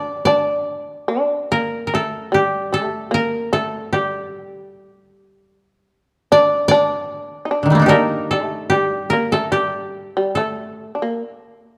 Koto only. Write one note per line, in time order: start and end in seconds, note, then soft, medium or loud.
0.00 0.25 D5 medium
0.25 1.85 D5 medium
1.52 1.87 A#4 medium
1.87 2.01 A#4 soft
1.95 2.73 A4 medium
2.34 3.92 G4 medium
2.74 3.20 A4 medium
3.14 3.59 A#4 medium
3.53 5.43 A4 medium
3.93 5.97 G4 medium
6.32 6.68 D5 medium
6.68 8.28 D5 medium
7.63 7.88 D3 soft
7.63 7.86 D#3 soft
7.70 7.94 G3 soft
7.70 7.95 A3 soft
7.75 7.94 A#3 soft
7.80 10.22 D4 soft
7.80 10.16 D#4 soft
7.86 8.69 G4 soft
7.86 8.30 A4 medium
7.86 8.37 A#4 medium
8.31 9.16 A4 medium
8.70 9.51 G4 medium
9.10 9.38 A#4 medium
9.32 10.35 A4 medium
9.52 11.56 G4 medium
10.35 11.78 A4 medium